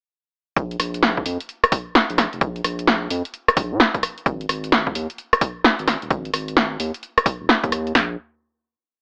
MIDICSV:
0, 0, Header, 1, 3, 480
1, 0, Start_track
1, 0, Tempo, 461538
1, 590, Time_signature, 4, 2, 24, 8
1, 9371, End_track
2, 0, Start_track
2, 0, Title_t, "Sub bass"
2, 0, Program_c, 0, 38
2, 588, Note_on_c, 0, 34, 100
2, 796, Note_off_c, 0, 34, 0
2, 828, Note_on_c, 0, 34, 81
2, 1282, Note_off_c, 0, 34, 0
2, 1308, Note_on_c, 0, 41, 88
2, 1433, Note_off_c, 0, 41, 0
2, 2181, Note_on_c, 0, 34, 78
2, 2364, Note_off_c, 0, 34, 0
2, 2423, Note_on_c, 0, 29, 98
2, 2494, Note_off_c, 0, 29, 0
2, 2509, Note_on_c, 0, 34, 99
2, 2717, Note_off_c, 0, 34, 0
2, 2750, Note_on_c, 0, 34, 83
2, 3203, Note_off_c, 0, 34, 0
2, 3228, Note_on_c, 0, 41, 90
2, 3353, Note_off_c, 0, 41, 0
2, 3711, Note_on_c, 0, 34, 106
2, 3863, Note_on_c, 0, 46, 87
2, 3878, Note_off_c, 0, 34, 0
2, 3934, Note_off_c, 0, 46, 0
2, 4430, Note_on_c, 0, 32, 102
2, 4637, Note_off_c, 0, 32, 0
2, 4671, Note_on_c, 0, 32, 86
2, 5124, Note_off_c, 0, 32, 0
2, 5151, Note_on_c, 0, 39, 92
2, 5274, Note_off_c, 0, 39, 0
2, 6023, Note_on_c, 0, 32, 78
2, 6205, Note_off_c, 0, 32, 0
2, 6262, Note_on_c, 0, 27, 97
2, 6333, Note_off_c, 0, 27, 0
2, 6349, Note_on_c, 0, 32, 100
2, 6556, Note_off_c, 0, 32, 0
2, 6589, Note_on_c, 0, 32, 84
2, 7043, Note_off_c, 0, 32, 0
2, 7069, Note_on_c, 0, 39, 93
2, 7193, Note_off_c, 0, 39, 0
2, 7701, Note_on_c, 0, 27, 94
2, 7773, Note_off_c, 0, 27, 0
2, 7941, Note_on_c, 0, 39, 98
2, 8243, Note_off_c, 0, 39, 0
2, 8269, Note_on_c, 0, 34, 96
2, 8493, Note_off_c, 0, 34, 0
2, 9371, End_track
3, 0, Start_track
3, 0, Title_t, "Drums"
3, 588, Note_on_c, 9, 36, 112
3, 589, Note_on_c, 9, 42, 63
3, 692, Note_off_c, 9, 36, 0
3, 693, Note_off_c, 9, 42, 0
3, 741, Note_on_c, 9, 42, 35
3, 828, Note_on_c, 9, 37, 31
3, 828, Note_on_c, 9, 46, 106
3, 845, Note_off_c, 9, 42, 0
3, 932, Note_off_c, 9, 37, 0
3, 932, Note_off_c, 9, 46, 0
3, 981, Note_on_c, 9, 42, 64
3, 1067, Note_on_c, 9, 38, 121
3, 1085, Note_off_c, 9, 42, 0
3, 1171, Note_off_c, 9, 38, 0
3, 1220, Note_on_c, 9, 36, 61
3, 1307, Note_on_c, 9, 46, 93
3, 1324, Note_off_c, 9, 36, 0
3, 1411, Note_off_c, 9, 46, 0
3, 1461, Note_on_c, 9, 42, 63
3, 1549, Note_off_c, 9, 42, 0
3, 1549, Note_on_c, 9, 42, 63
3, 1653, Note_off_c, 9, 42, 0
3, 1702, Note_on_c, 9, 37, 67
3, 1702, Note_on_c, 9, 42, 66
3, 1789, Note_on_c, 9, 36, 107
3, 1789, Note_on_c, 9, 46, 108
3, 1806, Note_off_c, 9, 37, 0
3, 1806, Note_off_c, 9, 42, 0
3, 1893, Note_off_c, 9, 36, 0
3, 1893, Note_off_c, 9, 46, 0
3, 2030, Note_on_c, 9, 38, 113
3, 2134, Note_off_c, 9, 38, 0
3, 2182, Note_on_c, 9, 42, 51
3, 2269, Note_on_c, 9, 37, 35
3, 2269, Note_on_c, 9, 38, 59
3, 2269, Note_on_c, 9, 46, 96
3, 2286, Note_off_c, 9, 42, 0
3, 2373, Note_off_c, 9, 37, 0
3, 2373, Note_off_c, 9, 38, 0
3, 2373, Note_off_c, 9, 46, 0
3, 2422, Note_on_c, 9, 42, 37
3, 2509, Note_off_c, 9, 42, 0
3, 2509, Note_on_c, 9, 36, 110
3, 2509, Note_on_c, 9, 42, 65
3, 2613, Note_off_c, 9, 36, 0
3, 2613, Note_off_c, 9, 42, 0
3, 2662, Note_on_c, 9, 42, 34
3, 2750, Note_on_c, 9, 37, 33
3, 2750, Note_on_c, 9, 46, 103
3, 2766, Note_off_c, 9, 42, 0
3, 2854, Note_off_c, 9, 37, 0
3, 2854, Note_off_c, 9, 46, 0
3, 2902, Note_on_c, 9, 42, 60
3, 2990, Note_on_c, 9, 38, 127
3, 3006, Note_off_c, 9, 42, 0
3, 3094, Note_off_c, 9, 38, 0
3, 3229, Note_on_c, 9, 46, 93
3, 3333, Note_off_c, 9, 46, 0
3, 3382, Note_on_c, 9, 42, 61
3, 3471, Note_off_c, 9, 42, 0
3, 3471, Note_on_c, 9, 42, 64
3, 3575, Note_off_c, 9, 42, 0
3, 3623, Note_on_c, 9, 37, 72
3, 3623, Note_on_c, 9, 42, 66
3, 3710, Note_on_c, 9, 36, 107
3, 3710, Note_on_c, 9, 46, 105
3, 3727, Note_off_c, 9, 37, 0
3, 3727, Note_off_c, 9, 42, 0
3, 3814, Note_off_c, 9, 36, 0
3, 3814, Note_off_c, 9, 46, 0
3, 3951, Note_on_c, 9, 38, 125
3, 4055, Note_off_c, 9, 38, 0
3, 4103, Note_on_c, 9, 36, 60
3, 4104, Note_on_c, 9, 42, 49
3, 4192, Note_on_c, 9, 37, 35
3, 4192, Note_on_c, 9, 46, 96
3, 4207, Note_off_c, 9, 36, 0
3, 4208, Note_off_c, 9, 42, 0
3, 4296, Note_off_c, 9, 37, 0
3, 4296, Note_off_c, 9, 46, 0
3, 4344, Note_on_c, 9, 42, 34
3, 4430, Note_on_c, 9, 36, 120
3, 4432, Note_off_c, 9, 42, 0
3, 4432, Note_on_c, 9, 42, 64
3, 4534, Note_off_c, 9, 36, 0
3, 4536, Note_off_c, 9, 42, 0
3, 4585, Note_on_c, 9, 42, 36
3, 4672, Note_on_c, 9, 37, 32
3, 4672, Note_on_c, 9, 46, 103
3, 4689, Note_off_c, 9, 42, 0
3, 4776, Note_off_c, 9, 37, 0
3, 4776, Note_off_c, 9, 46, 0
3, 4824, Note_on_c, 9, 42, 62
3, 4911, Note_on_c, 9, 38, 127
3, 4928, Note_off_c, 9, 42, 0
3, 5015, Note_off_c, 9, 38, 0
3, 5063, Note_on_c, 9, 36, 62
3, 5151, Note_on_c, 9, 46, 89
3, 5167, Note_off_c, 9, 36, 0
3, 5255, Note_off_c, 9, 46, 0
3, 5304, Note_on_c, 9, 42, 60
3, 5391, Note_off_c, 9, 42, 0
3, 5391, Note_on_c, 9, 42, 65
3, 5495, Note_off_c, 9, 42, 0
3, 5543, Note_on_c, 9, 37, 70
3, 5543, Note_on_c, 9, 42, 66
3, 5630, Note_on_c, 9, 36, 108
3, 5630, Note_on_c, 9, 46, 103
3, 5647, Note_off_c, 9, 37, 0
3, 5647, Note_off_c, 9, 42, 0
3, 5734, Note_off_c, 9, 36, 0
3, 5734, Note_off_c, 9, 46, 0
3, 5870, Note_on_c, 9, 38, 121
3, 5974, Note_off_c, 9, 38, 0
3, 6024, Note_on_c, 9, 42, 49
3, 6111, Note_on_c, 9, 37, 32
3, 6111, Note_on_c, 9, 38, 67
3, 6111, Note_on_c, 9, 46, 96
3, 6128, Note_off_c, 9, 42, 0
3, 6215, Note_off_c, 9, 37, 0
3, 6215, Note_off_c, 9, 38, 0
3, 6215, Note_off_c, 9, 46, 0
3, 6263, Note_on_c, 9, 42, 35
3, 6349, Note_on_c, 9, 36, 114
3, 6350, Note_off_c, 9, 42, 0
3, 6350, Note_on_c, 9, 42, 64
3, 6453, Note_off_c, 9, 36, 0
3, 6454, Note_off_c, 9, 42, 0
3, 6503, Note_on_c, 9, 42, 36
3, 6589, Note_on_c, 9, 37, 32
3, 6589, Note_on_c, 9, 46, 101
3, 6607, Note_off_c, 9, 42, 0
3, 6693, Note_off_c, 9, 37, 0
3, 6693, Note_off_c, 9, 46, 0
3, 6742, Note_on_c, 9, 42, 62
3, 6829, Note_on_c, 9, 38, 122
3, 6846, Note_off_c, 9, 42, 0
3, 6933, Note_off_c, 9, 38, 0
3, 7070, Note_on_c, 9, 46, 93
3, 7174, Note_off_c, 9, 46, 0
3, 7222, Note_on_c, 9, 42, 64
3, 7310, Note_off_c, 9, 42, 0
3, 7310, Note_on_c, 9, 42, 63
3, 7414, Note_off_c, 9, 42, 0
3, 7464, Note_on_c, 9, 37, 67
3, 7464, Note_on_c, 9, 42, 66
3, 7549, Note_on_c, 9, 36, 112
3, 7550, Note_on_c, 9, 46, 102
3, 7568, Note_off_c, 9, 37, 0
3, 7568, Note_off_c, 9, 42, 0
3, 7653, Note_off_c, 9, 36, 0
3, 7654, Note_off_c, 9, 46, 0
3, 7790, Note_on_c, 9, 38, 120
3, 7894, Note_off_c, 9, 38, 0
3, 7941, Note_on_c, 9, 36, 63
3, 7943, Note_on_c, 9, 42, 52
3, 8031, Note_on_c, 9, 37, 32
3, 8031, Note_on_c, 9, 46, 93
3, 8045, Note_off_c, 9, 36, 0
3, 8047, Note_off_c, 9, 42, 0
3, 8135, Note_off_c, 9, 37, 0
3, 8135, Note_off_c, 9, 46, 0
3, 8184, Note_on_c, 9, 42, 36
3, 8269, Note_on_c, 9, 38, 101
3, 8269, Note_on_c, 9, 43, 100
3, 8288, Note_off_c, 9, 42, 0
3, 8373, Note_off_c, 9, 38, 0
3, 8373, Note_off_c, 9, 43, 0
3, 9371, End_track
0, 0, End_of_file